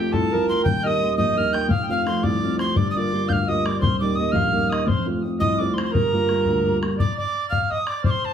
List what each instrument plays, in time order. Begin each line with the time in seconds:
Already playing: upright piano F1 A3 C4 F4, accordion G4, tin whistle G5
0.12 upright piano C2, accordion A4, tin whistle A5, bodhran
0.23 bodhran
0.32 upright piano F3 C4 F4, accordion A#4, bodhran
0.48 upright piano A3 C4 F4, tin whistle C6
0.64 upright piano D#1 D#2, accordion G5, tin whistle G6, bodhran
0.83 upright piano A#3 D#4 G4, accordion D#5, tin whistle D#6 F6
1.01 upright piano A#3 D#4 G4
1.17 upright piano A#1, accordion D#5, tin whistle D#6, bodhran
1.28 bodhran
1.36 upright piano A#3 D#4 G4, tin whistle F6, bodhran
1.51 upright piano A#3 D#4 G4, accordion G5, tin whistle G6, bodhran
1.68 upright piano F1 F2, accordion F5, tin whistle F6, bodhran
1.82 accordion G5
1.88 upright piano A3 C4 F4, accordion F5, tin whistle F6, bodhran
2.06 upright piano A3 C4, tin whistle C6, bodhran
2.23 upright piano C2, accordion D5, tin whistle D6, bodhran
2.33 bodhran
2.42 upright piano A3 C4 F4, bodhran
2.59 upright piano A3 C4 F4, accordion C5, tin whistle C6, bodhran
2.75 upright piano G1 G2, accordion D5, tin whistle D6, bodhran
2.90 tin whistle D#6
2.95 upright piano G3 A#3 F4, accordion D5, tin whistle D6, bodhran
3.12 upright piano G3 A#3 F4
3.29 upright piano D2, accordion F5, tin whistle G6, bodhran
3.33 tin whistle F6
3.40 bodhran
3.47 upright piano G3 A#3 F4, accordion D#5, tin whistle D#6, bodhran
3.65 upright piano G3 A#3, accordion D5, tin whistle D6, bodhran
3.77 accordion C5 D5
3.81 upright piano D#1 D#2, tin whistle C6, bodhran
4.00 upright piano G3 A#3 D#4, accordion D5, tin whistle D6, bodhran
4.15 upright piano G3 A#3 D#4, accordion D#5, tin whistle D#6
4.32 upright piano A#1, accordion F5, tin whistle F6, bodhran
4.46 bodhran
4.52 upright piano G3 A#3 D#4
4.56 bodhran
4.70 upright piano G3 A#3 D#4, accordion D#5, tin whistle D#6, bodhran
4.84 upright piano F1 F2, accordion C5 D5, tin whistle C6
4.89 bodhran
5.05 upright piano A3 C4 F4, bodhran
5.23 upright piano A3 C4 F4
5.39 upright piano C2, accordion D#5, tin whistle D#6, bodhran
5.51 bodhran
5.59 upright piano A3 C4 F4, accordion D5, tin whistle D6, bodhran
5.74 upright piano A3 C4 F4, accordion C5, tin whistle C6
5.78 bodhran
5.85 tin whistle C6
5.91 upright piano G1 G2, accordion A#4, tin whistle A#5, bodhran
6.13 upright piano G3 A#3 F4, bodhran
6.29 upright piano G3 A#3 F4, bodhran
6.45 upright piano D2, bodhran
6.56 bodhran
6.65 upright piano G3 A#3 F4, bodhran
6.82 upright piano G3 A#3 F4, bodhran
6.98 accordion D5, tin whistle D6, bodhran
7.17 accordion D5, tin whistle D6, bodhran
7.49 accordion F5, tin whistle F6, bodhran
7.62 tin whistle F6, bodhran
7.70 accordion D#5, tin whistle D#6, bodhran
7.87 accordion D5, tin whistle D6, bodhran
8.04 accordion C5, tin whistle D6, bodhran
8.10 tin whistle C6
8.24 tin whistle A5, bodhran